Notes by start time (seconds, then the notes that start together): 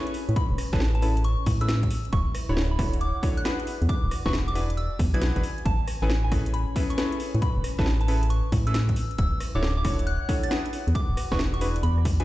Already playing: C#4 E4 G#4 A4 B4 G#5 C#6
0.07 closed hi-hat
0.14 open hi-hat
0.29 A2, closed hi-hat
0.36 B5, kick, closed hi-hat
0.51 E1
0.58 cross-stick, open hi-hat
0.73 A1 C#4 E4 G#4 A4 B4 A5, kick, snare
0.80 snare
0.95 A5, closed hi-hat
1.02 C#4 E4 G#4 A4 B4, open hi-hat
1.17 closed hi-hat
1.24 C#6, closed hi-hat
1.46 A2, kick, open hi-hat
1.61 C#4 E4 G#4 A4 B4 E6, closed hi-hat
1.69 snare, closed hi-hat
1.83 kick, closed hi-hat
1.91 E4, open hi-hat
2.05 closed hi-hat
2.12 D1 C#6, kick, closed hi-hat
2.31 C#5, cross-stick, open hi-hat
2.49 D1 D4 E4 F#4 A4 C#5 F#5 B5
2.57 snare
2.71 B5
2.79 D4 E4 F#4 A4 C#5, kick, cross-stick, open hi-hat
2.93 closed hi-hat
3.01 D6, closed hi-hat
3.23 D4 E4 F#4 A4 C#5, kick, open hi-hat
3.37 F#6, closed hi-hat
3.45 D4 E4 F#4 G#4 B4, snare, closed hi-hat
3.60 closed hi-hat
3.67 F#4, open hi-hat
3.82 E2 D5, closed hi-hat
3.89 D6, kick, closed hi-hat
4.04 D1
4.11 cross-stick, open hi-hat
4.26 E1 D4 E4 F#4 G#4 B4 C#6, kick, snare
4.33 snare
4.40 G#5
4.48 D6, closed hi-hat
4.55 D4 E4 F#4 G#4 B4, open hi-hat
4.70 closed hi-hat
4.77 E6, closed hi-hat
4.99 E2, kick, open hi-hat
5.14 B1 D4 E4 F#4 G#4 B4 G#6, closed hi-hat
5.22 snare, closed hi-hat
5.36 G#1 D4 E4 F#4 G#4 B4, kick, closed hi-hat
5.43 open hi-hat
5.58 closed hi-hat
5.65 A1 C#4 A5, kick, closed hi-hat
5.88 cross-stick, open hi-hat
6.02 A1 C#4 E4 G#4 A4 B4 G#5
6.09 B4, snare
6.24 G#5
6.32 C#4 E4 G#4 A4 B4, kick, cross-stick, open hi-hat
6.46 closed hi-hat
6.54 B5, closed hi-hat
6.76 C#4 E4 G#4 A4 B4, kick, open hi-hat
6.90 C#6, closed hi-hat
6.98 C#4 E4 G#4 A4 B4, snare, closed hi-hat
7.12 closed hi-hat
7.20 open hi-hat
7.34 A2, closed hi-hat
7.42 B5, kick, closed hi-hat
7.57 E1
7.64 cross-stick, open hi-hat
7.79 A1 C#4 E4 G#4 A4 B4 A5, kick, snare
7.86 snare
8.01 A5, closed hi-hat
8.08 C#4 E4 G#4 A4 B4, open hi-hat
8.23 closed hi-hat
8.30 C#6, closed hi-hat
8.52 A2, kick, open hi-hat
8.67 C#4 E4 G#4 A4 B4 E6, closed hi-hat
8.74 snare, closed hi-hat
8.89 kick, closed hi-hat
8.96 E4, open hi-hat
9.11 closed hi-hat
9.18 D1 E6, kick, closed hi-hat
9.36 F#5
9.40 cross-stick, open hi-hat
9.55 D1 D4 E4 F#4 A4 C#5 D6
9.63 snare
9.77 D6
9.85 D4 E4 F#4 A4 C#5, kick, cross-stick, open hi-hat
9.99 closed hi-hat
10.07 F#6, closed hi-hat
10.29 D4 E4 F#4 A4 C#5, kick, open hi-hat
10.43 A6, closed hi-hat
10.51 D4 E4 F#4 G#4 B4, snare, closed hi-hat
10.66 closed hi-hat
10.73 F#4, open hi-hat
10.87 E2, closed hi-hat
10.95 D6, kick, closed hi-hat
11.10 D1 D5
11.17 cross-stick, open hi-hat
11.32 E1 D4 E4 F#4 G#4 B4 C#6, kick, snare
11.39 snare
11.54 C#6, closed hi-hat
11.61 D4 E4 F#4 G#4 B4 G#5, open hi-hat
11.76 closed hi-hat
11.83 E2 B5, closed hi-hat
11.98 cross-stick
12.05 kick, open hi-hat
12.20 D4 E4 F#4 G#4 B4 G#5, closed hi-hat